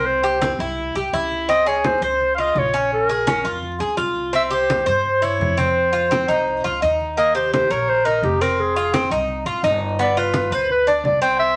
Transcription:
0.00 0.53 C2 medium
0.00 0.23 C4 medium
0.06 0.60 C5 medium
0.06 high conga soft
0.24 0.41 G4 medium
0.24 high conga soft
0.41 0.59 C4 medium
0.41 high conga loud
0.59 0.92 C2 medium
0.59 0.94 E4 medium
0.59 high conga soft
0.79 high conga soft
0.95 1.11 C2 medium
0.95 1.13 G4 medium
0.95 high conga soft
1.13 1.96 C#2 medium
1.13 1.48 E4 medium
1.13 high conga soft
1.32 high conga soft
1.49 1.66 C4 medium
1.49 1.69 D#5 loud
1.49 high conga soft
1.66 2.01 G#4 medium
1.66 1.87 C#5 medium
1.66 high conga soft
1.84 2.03 C5 medium
1.84 high conga medium
2.01 2.51 C#2 medium
2.01 2.37 C5 medium
2.01 2.32 C5 medium
2.21 high conga soft
2.35 2.73 F4 medium
2.35 2.41 F5 medium
2.35 high conga soft
2.40 2.60 D#5 medium
2.55 3.39 A#1 medium
2.55 2.93 C#5 medium
2.55 high conga medium
2.74 3.08 C#4 medium
2.91 3.60 A#4 medium
2.91 high conga soft
3.09 3.26 G#4 medium
3.09 high conga soft
3.27 3.44 C#4 medium
3.27 high conga medium
3.44 3.77 F2 medium
3.44 3.79 F4 medium
3.44 high conga soft
3.63 high conga soft
3.80 3.97 C#2 medium
3.80 3.97 G#4 medium
3.80 high conga soft
3.97 4.81 C2 medium
3.97 4.32 F4 medium
3.97 high conga soft
4.16 high conga soft
4.33 4.51 C4 medium
4.33 4.43 E5 loud
4.33 high conga soft
4.50 4.85 G4 medium
4.50 4.85 C5 medium
4.50 high conga soft
4.70 high conga medium
4.86 5.36 G2 medium
4.86 5.21 C5 medium
4.86 5.25 C5 medium
5.05 high conga soft
5.22 5.57 E4 medium
5.22 5.60 C#5 medium
5.22 high conga soft
5.39 6.22 F2 medium
5.39 high conga medium
5.58 5.92 C4 medium
5.58 6.82 C5 medium
5.58 high conga medium
5.77 high conga soft
5.93 6.10 F4 medium
5.93 high conga soft
6.11 6.28 C4 medium
6.11 high conga medium
6.28 6.62 C2 medium
6.28 6.63 D#4 medium
6.28 high conga soft
6.47 high conga soft
6.64 6.81 C#2 medium
6.64 6.81 F4 medium
6.64 high conga soft
6.82 7.65 D#2 medium
6.82 7.16 D#4 medium
6.82 high conga soft
7.01 high conga soft
7.17 7.34 A#3 medium
7.17 7.34 D#5 loud
7.17 high conga soft
7.35 7.69 G4 medium
7.35 7.52 C5 medium
7.35 high conga soft
7.53 7.73 C5 medium
7.53 high conga medium
7.70 8.19 A#1 medium
7.70 8.05 A#4 medium
7.70 7.90 C#5 medium
7.88 8.07 C5 medium
7.88 high conga soft
8.05 8.40 D#4 medium
8.05 8.23 A#4 medium
8.05 high conga soft
8.22 9.05 F1 medium
8.22 8.43 G4 medium
8.22 high conga medium
8.41 8.75 C4 medium
8.41 8.62 A#4 medium
8.59 9.12 G#4 medium
8.59 high conga soft
8.76 8.93 F4 medium
8.76 high conga soft
8.94 9.11 C4 medium
8.94 high conga medium
9.10 9.43 C2 medium
9.10 9.45 D#4 medium
9.10 high conga soft
9.28 high conga soft
9.45 9.62 G#1 medium
9.45 9.63 F4 medium
9.45 high conga soft
9.63 10.46 G1 medium
9.63 9.98 D#4 medium
9.63 high conga soft
9.80 high conga soft
9.99 10.16 B3 medium
9.99 10.21 D5 medium
9.99 high conga soft
10.16 10.51 F4 medium
10.16 10.35 B4 medium
10.16 high conga soft
10.34 10.51 B4 medium
10.34 high conga medium
10.51 11.00 D2 medium
10.51 10.86 B4 medium
10.51 10.69 C5 medium
10.69 10.90 B4 medium
10.69 high conga soft
10.87 11.21 D4 medium
10.87 11.05 D5 medium
10.87 high conga soft
11.04 11.56 C2 medium
11.04 11.21 D5 medium
11.04 high conga medium
11.22 11.56 C4 medium
11.22 11.38 G5 medium
11.40 11.56 E5 loud
11.40 high conga soft

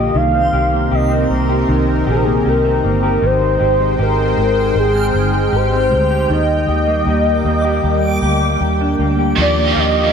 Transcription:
0.00 0.12 D3 medium
0.00 0.14 F3 medium
0.00 0.12 A#3 medium
0.00 0.37 A#3 medium
0.00 0.10 F4 medium
0.00 0.12 G4 medium
0.00 0.53 G4 medium
0.00 0.18 D#5 medium
0.14 0.48 C2 loud
0.14 3.19 C3 medium
0.14 1.68 D#3 medium
0.14 3.19 C4 medium
0.14 6.26 D#4 medium
0.14 3.19 A#4 medium
0.14 0.96 F5 loud
0.34 1.11 C4 medium
0.53 0.87 C2 medium
0.53 0.91 G4 medium
0.72 1.29 A#3 medium
0.91 1.26 C2 medium
0.91 1.49 G4 medium
0.91 1.32 D#5 medium
1.11 1.87 C4 medium
1.30 1.64 C2 medium
1.30 2.25 A#3 medium
1.49 2.06 G4 medium
1.68 2.02 C2 medium
1.68 3.21 D#3 medium
1.88 2.64 C4 medium
2.07 2.41 A#1 medium
2.07 2.45 G4 medium
2.07 2.18 G#4 medium
2.16 2.25 A#4 medium
2.24 2.83 A#3 medium
2.24 2.50 G#4 medium
2.45 2.79 C2 medium
2.45 3.02 G4 medium
2.45 2.86 A#4 medium
2.64 3.41 C4 medium
2.84 3.18 G1 medium
2.84 3.30 A#3 medium
2.84 3.27 A#4 medium
3.03 3.59 G4 medium
3.22 3.56 G#1 loud
3.22 6.29 D#3 medium
3.22 6.27 G#3 medium
3.22 6.27 C5 medium
3.22 4.03 C5 loud
3.22 9.34 G5 medium
3.41 4.17 C4 medium
3.60 3.94 G#1 medium
3.60 3.98 G4 medium
3.79 4.36 G#3 medium
3.79 5.78 F6 medium
3.99 4.33 G#1 medium
3.99 5.36 G4 medium
3.99 4.77 A#4 loud
4.18 4.94 C4 medium
4.37 4.71 G#1 medium
4.37 5.32 G#3 medium
4.75 5.10 G#1 loud
4.75 5.57 G#4 loud
4.95 5.71 C4 medium
5.14 5.48 G1 medium
5.33 5.90 G#3 medium
5.53 5.93 G#1 medium
5.53 6.10 G4 medium
5.53 6.33 C5 loud
5.72 6.38 C4 medium
5.91 6.25 D2 medium
5.91 6.38 G#3 medium
6.11 6.68 G4 medium
6.29 6.64 D#2 loud
6.29 8.84 D#3 medium
6.29 9.34 G3 medium
6.29 9.34 A#3 medium
6.29 9.00 D#5 loud
6.68 7.02 D#2 medium
6.68 7.07 G4 medium
6.87 7.45 A#3 medium
7.04 7.41 D#2 medium
7.04 7.64 G4 medium
7.04 9.01 D6 medium
7.45 7.79 D#2 medium
7.45 8.42 A#3 medium
7.65 8.22 G4 medium
7.84 8.18 D#2 medium
8.22 8.56 D2 medium
8.22 8.61 G4 medium
8.42 8.99 A#3 medium
8.61 8.95 D#2 medium
8.61 9.18 G4 medium
8.81 10.13 D4 medium
8.99 9.33 D2 medium
8.99 9.57 A#3 medium
9.19 9.76 G4 medium
9.36 9.72 D#2 loud
9.36 10.13 D#3 medium
9.36 10.13 F3 medium
9.36 10.13 A#3 medium
9.36 10.13 G4 medium
9.36 10.13 F5 medium
9.36 10.13 D6 medium
9.41 10.13 G4 medium
9.41 9.73 D5 loud
9.57 10.13 A#3 medium
9.72 9.81 F5 medium
9.72 10.13 C6 medium
9.76 10.10 D#2 medium
9.76 10.13 G4 medium
9.76 10.13 D#5 loud

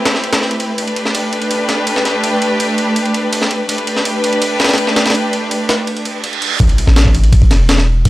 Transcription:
0.00 0.76 A3 medium
0.00 0.76 C4 medium
0.00 0.76 E4 medium
0.00 0.76 G4 medium
0.00 0.76 B4 medium
0.05 snare medium
0.05 ride medium
0.15 snare soft
0.24 ride medium
0.33 snare loud
0.33 ride medium
0.42 snare soft
0.51 ride medium
0.60 ride medium
0.78 3.67 A3 medium
0.78 3.67 D4 medium
0.78 3.67 G4 medium
0.78 3.67 B4 loud
0.78 ride medium
0.87 ride soft
0.96 ride medium
1.05 snare soft
1.15 ride medium
1.33 ride medium
1.42 ride soft
1.51 ride medium
1.69 snare soft
1.69 ride medium
1.87 ride medium
1.96 snare medium
2.05 snare soft
2.05 ride medium
2.24 ride medium
2.42 ride medium
2.60 ride medium
2.78 ride medium
2.96 ride medium
3.05 ride soft
3.14 ride medium
3.33 ride medium
3.42 snare soft
3.51 ride medium
3.69 6.58 A3 medium
3.69 6.58 D4 medium
3.69 6.58 G4 medium
3.69 6.58 B4 loud
3.69 ride medium
3.78 ride soft
3.87 ride medium
3.96 snare soft
4.05 ride medium
4.24 ride medium
4.33 ride soft
4.42 ride medium
4.60 snare medium
4.60 ride medium
4.64 snare medium
4.64 ride medium
4.69 snare medium
4.69 ride medium
4.73 snare medium
4.73 ride medium
4.78 ride medium
4.87 snare medium
4.96 snare loud
4.96 ride medium
5.06 snare medium
5.06 ride medium
5.10 snare medium
5.10 ride medium
5.15 ride medium
5.33 ride medium
5.51 ride medium
5.69 snare medium
5.69 ride medium
5.87 ride medium
5.87 reverse cymbal medium
5.97 ride soft
6.05 ride medium
6.24 ride medium
6.33 ride soft
6.42 ride medium
6.60 6.68 A1 loud
6.60 kick loud
6.60 ride medium
6.60 impact medium
6.69 ride soft
6.78 ride medium
6.87 7.53 A1 medium
6.87 snare soft
6.96 snare loud
6.96 ride medium
7.05 kick medium
7.15 ride medium
7.24 ride soft
7.33 kick loud
7.33 ride medium
7.42 kick medium
7.51 8.04 E1 loud
7.51 snare medium
7.51 ride medium
7.69 snare loud
7.69 ride medium
7.78 snare medium
8.05 8.10 A1 loud
8.05 kick loud
8.05 ride medium

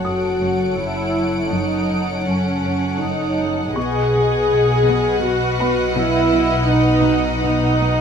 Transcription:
0.00 3.72 F#1 medium
0.00 3.71 F#2 medium
0.00 0.74 F#4 medium
0.00 3.72 A4 medium
0.00 3.33 C#5 soft
0.00 3.72 C#5 medium
0.00 3.71 F#5 medium
0.04 0.26 F#2 soft
0.04 2.23 D#6 soft
0.04 3.35 D7 soft
0.41 0.63 F#2 medium
0.78 1.01 F#2 soft
0.78 1.52 E4 medium
0.78 1.52 E4 soft
1.16 1.38 F#3 soft
1.52 1.75 F#2 soft
1.52 2.25 D#4 medium
1.52 2.27 D#4 soft
1.90 2.12 F#2 soft
2.26 2.49 F#2 soft
2.26 2.99 C#4 medium
2.26 3.01 C#4 medium
2.64 2.86 F#2 medium
3.00 3.23 F#2 soft
3.00 3.75 D#4 medium
3.39 3.61 F#3 soft
3.75 8.01 B1 medium
3.75 3.98 B2 medium
3.75 8.01 B2 medium
3.75 5.20 G#4 medium
3.75 5.23 G#4 medium
3.75 8.01 B4 medium
3.75 8.01 D#5 medium
3.75 8.01 F#5 medium
3.75 7.75 B5 soft
3.75 5.92 C#6 medium
4.13 4.35 B2 soft
4.49 4.72 B2 soft
4.49 6.94 F6 soft
4.86 5.08 B2 medium
5.23 5.45 B2 soft
5.23 5.97 F#4 medium
5.23 5.79 F#4 medium
5.59 5.81 B3 soft
5.59 7.75 B5 medium
5.96 6.18 B2 medium
5.96 6.68 E4 medium
6.33 6.55 B2 medium
6.69 6.91 B2 medium
6.69 7.40 D#4 medium
6.69 7.41 D#4 medium
6.94 7.75 E6 soft
7.06 7.28 B2 medium
7.42 7.65 B2 medium
7.42 8.01 D#4 medium
7.79 8.01 B3 soft

